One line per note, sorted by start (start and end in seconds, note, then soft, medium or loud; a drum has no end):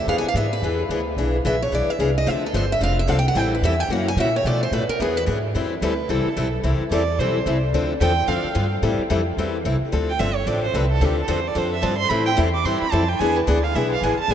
0.07 0.22 E2 medium
0.07 0.26 E3 medium
0.07 0.27 B3 medium
0.07 0.27 D4 medium
0.07 0.27 G#4 medium
0.07 0.17 F5 medium
0.18 0.26 G#5 loud
0.23 muted upright bass stroke soft
0.28 0.36 F5 medium
0.34 0.61 G#2 medium
0.34 0.46 E3 medium
0.34 0.46 B3 medium
0.34 0.46 D4 medium
0.34 0.46 G#4 medium
0.34 0.51 E5 medium
0.53 1.14 B4 medium
0.62 0.88 E2 medium
0.62 0.81 E3 medium
0.62 0.82 B3 medium
0.62 0.82 D4 medium
0.62 0.82 G#4 medium
0.89 1.16 D2 medium
0.89 1.00 E3 medium
0.89 1.00 B3 medium
0.89 1.00 D4 medium
0.89 1.01 G#4 medium
1.16 1.43 B1 medium
1.16 1.36 E3 medium
1.16 1.36 B3 medium
1.16 1.36 D4 medium
1.16 1.36 G#4 medium
1.45 1.71 A#1 medium
1.45 1.55 E3 medium
1.45 1.55 B3 medium
1.45 1.55 D4 medium
1.45 1.55 G#4 medium
1.45 1.61 E5 medium
1.62 1.72 C#5 medium
1.72 1.86 B1 medium
1.72 1.90 E3 medium
1.72 1.90 B3 medium
1.72 1.91 D4 medium
1.72 1.91 G#4 medium
1.72 1.90 D5 medium
1.88 2.01 E5 medium
1.88 muted upright bass stroke soft
1.99 2.25 C2 medium
1.99 2.10 E3 medium
1.99 2.10 B3 medium
1.99 2.10 D4 medium
1.99 2.10 G#4 medium
1.99 2.15 F5 loud
2.18 2.28 D#5 medium
2.26 2.53 D2 medium
2.26 2.45 D3 medium
2.26 2.45 F3 medium
2.26 2.45 C4 medium
2.26 2.45 D4 medium
2.26 2.45 A4 medium
2.26 2.43 E5 loud
2.46 2.55 A4 medium
2.54 2.80 G1 medium
2.54 2.64 D3 medium
2.54 2.64 F3 medium
2.54 2.64 C4 medium
2.54 2.65 D4 loud
2.54 2.65 A4 medium
2.54 2.70 C5 medium
2.72 2.82 E5 medium
2.81 3.07 F1 medium
2.81 2.99 D3 medium
2.81 2.99 F3 medium
2.81 3.00 C4 medium
2.81 3.00 D4 medium
2.81 3.00 A4 medium
2.81 2.98 F5 loud
2.99 3.09 E5 medium
3.07 3.34 C2 medium
3.07 3.18 D3 medium
3.07 3.19 F3 medium
3.07 3.19 C4 medium
3.07 3.19 D4 medium
3.07 3.19 A4 medium
3.07 3.18 F5 loud
3.19 3.27 G5 loud
3.28 3.37 F#5 medium
3.35 3.61 A1 medium
3.35 3.54 E3 medium
3.35 3.54 G3 medium
3.35 3.54 C4 medium
3.35 3.54 E4 medium
3.35 3.55 A4 medium
3.35 3.52 G5 loud
3.55 3.64 B4 medium
3.62 3.88 E2 medium
3.62 3.74 E3 medium
3.62 3.74 G3 medium
3.62 3.74 C4 medium
3.62 3.74 E4 medium
3.62 3.74 A4 medium
3.62 3.80 E5 medium
3.80 3.90 G5 loud
3.89 4.16 F#2 medium
3.89 4.09 C#3 medium
3.89 4.09 E3 medium
3.89 4.09 A#3 medium
3.89 4.09 C#4 medium
3.89 4.09 F#4 medium
3.89 4.07 F#5 medium
4.08 4.18 G#5 loud
4.16 4.43 A#2 loud
4.16 4.28 C#3 medium
4.16 4.28 E3 medium
4.16 4.28 A#3 medium
4.16 4.28 C#4 medium
4.16 4.28 F#4 medium
4.20 4.34 E5 medium
4.36 4.46 C#5 medium
4.44 4.71 B2 medium
4.44 4.64 B2 medium
4.44 4.64 F3 medium
4.44 4.64 A3 medium
4.44 4.64 D4 medium
4.44 4.64 A4 medium
4.44 4.61 D5 medium
4.63 4.74 C5 medium
4.71 4.87 A2 loud
4.71 4.83 B2 medium
4.71 4.83 F3 medium
4.71 4.83 A3 medium
4.71 4.83 D4 medium
4.71 4.83 A4 medium
4.71 4.89 B4 medium
4.89 5.00 A#4 medium
4.89 muted upright bass stroke soft
5.00 5.26 E2 medium
5.00 5.18 E3 medium
5.00 5.19 B3 medium
5.00 5.19 D4 medium
5.00 5.19 G#4 medium
5.00 5.16 G#4 medium
5.17 5.23 B4 loud
5.26 5.54 G#2 loud
5.26 5.37 E3 medium
5.26 5.37 B3 medium
5.26 5.38 D4 medium
5.26 5.38 G#4 medium
5.55 5.81 E2 medium
5.55 5.73 E3 medium
5.55 5.73 G3 medium
5.55 5.74 C4 medium
5.55 5.74 E4 medium
5.55 5.74 A4 medium
5.82 6.08 D2 medium
5.82 5.92 E3 medium
5.82 5.92 G3 medium
5.82 5.93 C4 medium
5.82 5.93 E4 medium
5.82 5.93 A4 medium
5.82 6.11 B4 medium
6.09 6.24 C2 medium
6.09 6.28 E3 medium
6.09 6.28 G3 medium
6.09 6.28 C4 medium
6.09 6.28 E4 medium
6.09 6.53 A4 medium
6.09 6.28 A4 medium
6.25 muted upright bass stroke soft
6.37 6.63 B1 medium
6.37 6.47 E3 medium
6.37 6.47 G3 medium
6.37 6.47 C4 medium
6.37 6.47 E4 medium
6.37 6.47 A4 medium
6.63 6.79 C2 medium
6.63 6.82 E3 medium
6.63 6.82 G3 medium
6.63 6.83 C4 medium
6.63 6.83 E4 medium
6.63 6.83 A4 medium
6.91 7.17 E2 loud
6.91 7.02 E3 medium
6.91 7.02 G3 medium
6.91 7.02 C4 medium
6.91 7.02 E4 medium
6.91 7.02 A4 medium
6.91 7.21 D5 medium
7.19 7.45 B1 medium
7.19 7.38 E3 medium
7.19 7.38 G3 medium
7.19 7.38 C4 medium
7.19 7.38 E4 medium
7.19 7.38 A4 medium
7.19 7.62 C5 medium
7.46 7.72 C2 medium
7.46 7.56 E3 medium
7.46 7.57 G3 medium
7.46 7.57 C4 medium
7.46 7.57 E4 medium
7.46 7.57 A4 medium
7.73 8.00 D2 medium
7.73 7.92 D3 medium
7.73 7.92 F3 medium
7.73 7.92 C4 medium
7.73 7.93 D4 medium
7.73 7.93 A4 medium
8.00 8.27 E2 medium
8.00 8.11 D3 medium
8.00 8.11 F3 medium
8.00 8.12 C4 medium
8.00 8.12 D4 loud
8.00 8.12 A4 loud
8.00 8.30 G5 loud
8.27 8.43 F2 medium
8.27 8.46 D3 medium
8.27 8.47 F3 medium
8.27 8.46 C4 medium
8.27 8.47 D4 medium
8.27 8.47 A4 medium
8.27 8.71 F5 medium
8.44 muted upright bass stroke soft
8.55 8.82 G2 medium
8.55 8.65 D3 medium
8.55 8.66 F3 medium
8.55 8.65 C4 medium
8.55 8.66 D4 medium
8.55 8.66 A4 medium
8.82 8.97 A2 medium
8.82 9.01 E3 medium
8.82 9.01 G3 medium
8.82 9.01 C4 medium
8.82 9.01 E4 medium
8.82 9.02 A4 medium
8.99 muted upright bass stroke soft
9.10 9.37 F2 medium
9.10 9.20 E3 medium
9.10 9.20 G3 medium
9.10 9.21 C4 medium
9.10 9.21 E4 medium
9.10 9.21 A4 medium
9.37 9.64 E2 medium
9.37 9.57 E3 medium
9.37 9.56 G3 medium
9.37 9.57 C4 medium
9.37 9.57 E4 medium
9.37 9.57 A4 medium
9.65 9.79 C2 medium
9.65 9.75 E3 medium
9.65 9.75 G3 medium
9.65 9.75 C4 medium
9.65 9.76 E4 medium
9.65 9.76 A4 medium
9.81 muted upright bass stroke soft
9.92 10.19 D2 medium
9.92 10.11 D3 medium
9.92 10.11 F3 medium
9.92 10.11 C4 medium
9.92 10.11 D4 medium
9.92 10.11 A4 medium
10.09 10.21 G5 medium
10.19 10.46 G1 medium
10.19 10.30 D3 medium
10.19 10.30 F3 medium
10.19 10.30 C4 medium
10.19 10.30 D4 medium
10.19 10.30 A4 medium
10.19 10.37 E5 medium
10.35 10.49 C#5 medium
10.47 10.73 A1 medium
10.47 10.65 D3 medium
10.47 10.66 F3 medium
10.47 10.66 C4 medium
10.47 10.66 D4 medium
10.47 10.66 A4 medium
10.47 10.63 D5 medium
10.64 10.78 C5 medium
10.74 11.00 C2 loud
10.74 10.85 D3 medium
10.74 10.85 F3 medium
10.74 10.85 C4 medium
10.74 10.85 D4 medium
10.74 10.85 A4 medium
10.74 10.91 B4 medium
10.91 11.06 A4 medium
11.01 11.27 D2 medium
11.01 11.20 D3 medium
11.01 11.20 F3 medium
11.01 11.20 C4 medium
11.01 11.20 D4 medium
11.01 11.20 A4 medium
11.05 11.19 G4 medium
11.20 11.32 A4 medium
11.28 11.55 E2 medium
11.28 11.39 D3 medium
11.28 11.39 F3 medium
11.28 11.39 C4 medium
11.28 11.39 D4 loud
11.28 11.39 A4 medium
11.28 11.49 C5 medium
11.48 11.59 D5 loud
11.55 11.82 F2 medium
11.55 11.74 D3 medium
11.55 11.74 F3 medium
11.55 11.74 C4 medium
11.55 11.75 D4 medium
11.55 11.75 A4 medium
11.55 11.72 C5 medium
11.73 11.84 E5 medium
11.82 12.09 G2 medium
11.82 11.93 D3 medium
11.82 11.94 F3 medium
11.82 11.94 C4 medium
11.82 11.94 D4 medium
11.82 11.94 A4 loud
11.82 11.97 A5 loud
11.98 12.10 C6 loud
12.09 12.37 A2 medium
12.09 12.29 E3 medium
12.09 12.29 G3 medium
12.09 12.29 C4 medium
12.09 12.29 E4 medium
12.09 12.29 A4 medium
12.09 12.25 B5 loud
12.26 12.33 G5 loud
12.37 12.64 E2 medium
12.37 12.48 E3 medium
12.37 12.48 G3 medium
12.37 12.48 C4 medium
12.37 12.48 E4 medium
12.37 12.48 A4 loud
12.54 12.67 D6 medium
12.65 12.80 G2 medium
12.65 12.84 E3 medium
12.65 12.84 G3 medium
12.65 12.84 C4 medium
12.65 12.84 E4 medium
12.65 12.84 A4 medium
12.65 12.80 C6 medium
12.81 12.93 B5 loud
12.81 muted upright bass stroke soft
12.92 13.19 F2 loud
12.92 13.03 E3 medium
12.92 13.03 G3 medium
12.92 13.03 C4 medium
12.92 13.03 E4 medium
12.92 13.04 A4 medium
12.92 13.10 A5 medium
13.08 13.21 G5 loud
13.19 13.47 E2 medium
13.19 13.39 E3 medium
13.19 13.39 B3 medium
13.19 13.39 D4 medium
13.19 13.39 G#4 medium
13.19 13.38 G#5 loud
13.36 13.50 B4 medium
13.47 13.74 D2 medium
13.47 13.58 E3 medium
13.47 13.58 B3 loud
13.47 13.58 D4 medium
13.47 13.58 G#4 loud
13.47 13.65 D5 medium
13.64 13.77 F5 loud
13.75 14.01 B1 medium
13.75 13.94 E3 medium
13.75 13.94 B3 medium
13.75 13.94 D4 medium
13.75 13.94 G#4 medium
13.75 13.91 E5 medium
13.92 14.05 F5 medium
14.02 14.17 A1 medium
14.02 14.13 E3 medium
14.02 14.13 B3 medium
14.02 14.14 D4 medium
14.02 14.14 G#4 medium
14.02 14.19 G#5 medium
14.18 14.32 A5 loud
14.18 muted upright bass stroke soft
14.28 14.34 G#1 medium
14.28 14.34 E3 medium
14.28 14.34 B3 medium
14.28 14.34 D4 medium
14.28 14.34 G#4 medium
14.28 14.34 G#5 medium